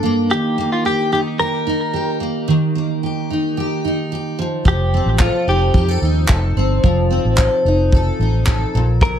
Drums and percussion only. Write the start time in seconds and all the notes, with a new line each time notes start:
4.65 kick
5.19 kick, clap
5.74 kick
6.28 kick, clap
6.84 kick
7.38 kick, clap
7.92 kick
8.46 kick, clap
9.01 kick